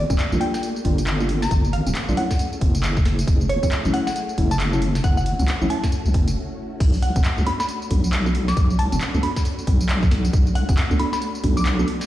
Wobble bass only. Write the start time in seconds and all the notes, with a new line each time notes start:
0.10 D1
0.32 A#1
0.85 G1
1.51 G1
1.86 D1
2.09 A#1
2.61 F#1
3.27 F#1
3.63 C#2
3.85 A1
4.38 F#1
5.04 F#1
5.39 C#2
5.61 A1
6.05 C#2
6.14 F#1
6.80 B1
7.16 F#1
7.38 D2
7.91 B1
8.57 B1
8.92 F#1
9.14 D2
9.67 B1
10.33 B1
10.69 F#1
10.91 D2
11.44 B1